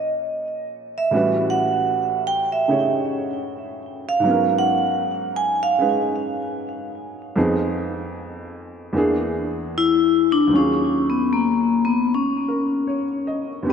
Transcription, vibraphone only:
0.00 0.10 D#5 medium
0.98 1.41 E5 medium
1.50 2.19 F#5 medium
2.27 2.48 G5 loud
2.52 2.90 E5 medium
4.09 4.52 F5 medium
4.58 5.28 F#5 medium
5.36 5.58 G#5 loud
5.63 5.86 F5 medium
9.78 10.30 E4 loud
10.32 10.56 D4 medium
10.56 11.02 C#4 medium
11.10 11.34 B3 medium
11.33 11.85 A#3 medium
11.85 12.10 B3 medium
12.14 13.38 C#4 medium

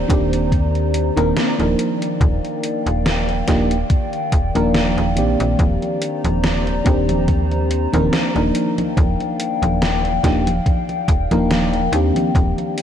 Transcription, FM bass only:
0.10 0.53 D#1 loud
0.52 1.11 D#2 medium
1.17 1.33 D#1 medium
1.59 1.76 D#1 medium
2.21 2.40 D#1 loud
2.86 3.43 D#1 medium
3.48 3.84 D#1 loud
4.32 4.52 D#1 medium
4.55 4.97 D#1 medium
4.97 5.18 D#1 medium
5.17 5.36 A#1 medium
5.40 5.56 A#1 medium
5.59 5.78 D#1 loud
6.24 6.81 D#1 medium
6.86 7.30 D#1 loud
7.28 7.87 D#2 medium
7.94 8.10 D#1 loud
8.36 8.52 D#1 medium
8.97 9.16 D#1 loud
9.62 10.19 D#1 medium
10.24 10.60 D#1 loud
11.08 11.28 D#1 medium
11.31 11.88 D#1 medium
11.92 12.12 D#2 medium
12.35 12.54 D#1 loud

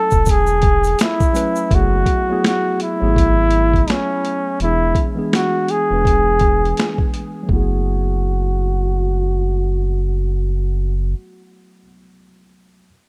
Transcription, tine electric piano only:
0.00 1.33 F#3 medium
0.00 1.34 A3 medium
0.00 1.35 C#4 medium
0.00 1.35 E4 medium
1.33 1.60 F#3 medium
1.33 1.60 A3 medium
1.33 1.61 C#4 medium
1.33 1.61 E4 medium
1.33 1.62 B4 medium
1.72 2.07 F#3 medium
1.72 2.07 A3 medium
1.72 2.08 B3 medium
1.72 2.08 E4 medium
1.72 2.09 G#4 medium
2.29 2.74 F#3 medium
2.29 2.75 A3 medium
2.29 2.75 B3 medium
2.29 2.76 E4 medium
2.29 2.76 G#4 medium
3.01 3.94 F#3 medium
3.01 3.94 A3 medium
3.01 3.95 B3 medium
3.01 3.95 E4 medium
3.01 3.96 G#4 medium
4.61 4.96 E3 medium
4.61 4.97 G#3 medium
4.61 4.97 B3 medium
4.61 4.98 D4 medium
4.61 4.98 G#4 medium
5.15 5.62 E3 medium
5.15 5.62 G#3 medium
5.15 5.63 B3 medium
5.15 5.63 D4 medium
5.15 5.64 G#4 medium
5.90 6.84 E3 medium
5.90 6.84 G#3 medium
5.90 6.84 B3 medium
5.90 6.85 D4 medium
5.90 6.85 B4 medium
7.43 11.81 F#3 medium
7.43 11.83 A3 medium
7.50 11.84 B3 medium
7.50 11.86 E4 medium
7.56 11.88 G#4 medium

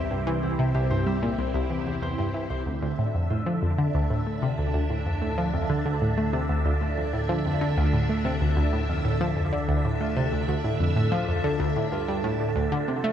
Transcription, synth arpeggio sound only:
0.11 0.22 G2 medium
0.27 0.38 E3 loud
0.43 0.54 E2 medium
0.59 0.70 C3 loud
0.75 0.86 C2 loud
0.91 1.02 G2 medium
1.07 1.22 G3 medium
1.23 1.30 A#2 medium
1.38 1.53 C2 medium
1.54 1.61 C2 loud
1.70 1.77 E2 medium
1.86 1.93 E2 medium
2.02 2.14 E2 medium
2.18 2.30 G2 medium
2.34 2.41 E3 medium
2.50 2.62 C2 medium
2.66 2.81 D2 medium
2.82 2.89 D2 loud
2.99 3.05 A2 medium
3.15 3.26 F2 medium
3.31 3.42 A2 medium
3.46 3.58 F3 loud
3.62 3.74 F2 medium
3.78 3.90 D3 loud
3.94 4.06 D2 loud
4.10 4.22 A2 medium
4.26 4.41 A3 medium
4.42 4.49 C3 loud
4.58 4.73 D2 medium
4.74 4.81 D2 loud
4.90 4.97 A2 medium
5.06 5.17 F2 medium
5.22 5.33 A2 medium
5.38 5.49 F3 loud
5.54 5.65 F2 medium
5.69 5.81 D3 loud
5.86 5.97 D2 loud
6.02 6.13 A2 medium
6.18 6.33 A3 medium
6.33 6.40 C3 loud
6.49 6.64 D2 medium
6.65 6.72 D2 loud
6.81 6.88 A2 medium
6.97 7.09 F2 medium
7.13 7.25 A2 medium
7.29 7.41 F3 medium
7.45 7.57 F2 medium
7.61 7.73 D3 loud
7.77 7.89 D2 loud
7.93 8.05 A2 medium
8.09 8.24 A3 medium
8.25 8.32 C3 loud
8.41 8.56 D2 medium
8.57 8.64 D2 loud
8.73 8.80 A2 medium
8.89 9.00 F2 medium
9.05 9.16 A2 medium
9.21 9.32 F3 loud
9.37 9.48 F2 medium
9.53 9.64 D3 medium
9.69 9.80 D2 loud
9.85 9.96 A2 medium
10.01 10.16 A3 medium
10.17 10.23 C3 loud
10.33 10.47 D2 medium
10.48 10.55 D2 loud
10.64 10.71 A2 medium
10.80 10.92 F2 medium
10.96 11.08 A2 medium
11.12 11.23 F3 loud
11.28 11.40 F2 medium
11.44 11.56 D3 loud
11.60 11.71 D2 loud
11.76 11.88 A2 medium
11.92 12.04 G2 medium
12.08 12.20 G2 loud
12.24 12.35 A2 loud
12.40 12.55 A2 medium
12.56 12.67 D2 loud
12.72 12.83 D3 loud
12.88 12.99 C3 medium
13.04 13.12 A3 loud

